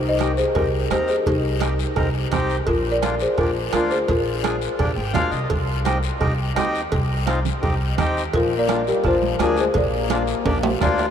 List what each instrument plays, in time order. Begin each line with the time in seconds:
Already playing: upright bass C2
0.09 marimba C5 D#5
0.19 accordion C4 D#4 G4, bombo rim, cowbell, high conga, short guiro
0.37 marimba G#4 C5, short guiro
0.54 upright bass C2, accordion C4 D#4 G4, marimba G4 A#4, bombo low, bombo rim, cowbell, high conga, long guiro
0.90 upright bass D#2, accordion C4 D#4 A#4, marimba G4 C5, bombo rim, cowbell, high conga, short guiro
1.08 marimba G#4 C5, short guiro
1.26 upright bass C2, marimba D#4 G4, bombo low, cowbell, high conga, long guiro
1.60 accordion C4 D#4 G4, bombo rim, cowbell, high conga, short guiro
1.79 short guiro
1.96 upright bass C2, accordion C4 D#4 A#4, bombo low, bombo rim, cowbell, high conga, long guiro
2.31 upright bass C2, accordion C4 D#4 G4, bombo low, bombo rim, cowbell, high conga, low conga, short guiro
2.50 short guiro
2.67 upright bass A#1, marimba F4 A#4, bombo low, cowbell, high conga, long guiro
2.92 marimba A#4 D5
3.02 accordion A#3 D4 F4, bombo rim, cowbell, high conga, short guiro
3.19 marimba G#4 C5, short guiro
3.38 upright bass A#1, accordion A#3 D4 G4, marimba F4 A#4, bombo low, bombo rim, cowbell, high conga, long guiro
3.73 upright bass D2, accordion A#3 D4 F4, marimba F4 A#4, bombo rim, cowbell, high conga, short guiro
3.91 marimba G#4 C5, short guiro
4.08 upright bass A#1, marimba F4 A#4, bombo low, cowbell, high conga, long guiro
4.42 accordion A#3 D4 G#4, bombo rim, cowbell, high conga, short guiro
4.61 short guiro
4.78 upright bass A#1, accordion A#3 D4 G4, bombo low, bombo rim, cowbell, high conga, long guiro
4.96 upright bass G#1, accordion G5
5.13 upright bass A#1, accordion A#3 D4 F4 F5, bombo low, bombo rim, cowbell, high conga, low conga, low timbale, short guiro
5.30 upright bass C2, accordion D#5, short guiro
5.50 upright bass C2, bombo low, cowbell, high conga, long guiro
5.84 accordion C4 D#4 G4, bombo rim, cowbell, high conga, short guiro
6.03 short guiro
6.19 upright bass C2, accordion C4 D#4 G4, bombo low, bombo rim, cowbell, high conga, long guiro
6.55 upright bass D#2, accordion C4 D#4 G4, bombo rim, cowbell, high conga, low timbale, short guiro
6.75 short guiro
6.92 upright bass C2, bombo low, cowbell, high conga, long guiro
7.26 accordion C4 D#4 F4, bombo rim, cowbell, high conga, short guiro
7.45 low conga, short guiro
7.62 upright bass C2, accordion C4 D#4 G4, bombo low, cowbell, high conga, long guiro
7.97 upright bass D#2, accordion C4 D#4 G4, bombo low, bombo rim, cowbell, high conga, low conga, short guiro
8.17 short guiro
8.33 upright bass A#1, trombone F3, marimba F4 A#4, bombo low, cowbell, high conga, long guiro
8.57 trombone A#3, marimba A#4 D5
8.68 accordion A#3 D4 F4, bombo rim, cowbell, high conga, short guiro
8.87 trombone G3, marimba G4 A#4, short guiro
9.03 upright bass A#1, trombone F3, accordion A#3 D4 F4, marimba F4 C5, bombo low, bombo rim, cowbell, high conga, long guiro
9.23 high conga
9.39 upright bass D2, trombone F3, accordion A#3 D4 G#4, marimba F4, bombo rim, cowbell, high conga, low timbale, short guiro
9.43 marimba A#4
9.57 trombone G#3, marimba G#4 C5, short guiro
9.74 upright bass A#1, trombone A#3, marimba A#4 D5, bombo low, cowbell, high conga, long guiro
10.10 accordion A#3 D4 F4, bombo rim, cowbell, high conga, short guiro
10.27 short guiro
10.45 upright bass A#1, accordion A#3 D4 G4, bombo low, cowbell, high conga, high timbale, long guiro
10.63 high conga, low timbale
10.81 upright bass D2, accordion A#3 D4 F4, bombo low, bombo rim, cowbell, high conga, low conga, low timbale, short guiro
10.98 low timbale, short guiro